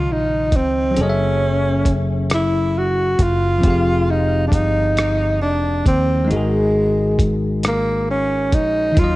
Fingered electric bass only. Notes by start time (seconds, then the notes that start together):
0.10 A#1
0.53 C#2
0.98 F#1
3.19 F#1
3.64 F1
4.53 G1
5.42 F1
5.86 D#2
6.31 G#1
8.53 A#1
8.98 D#2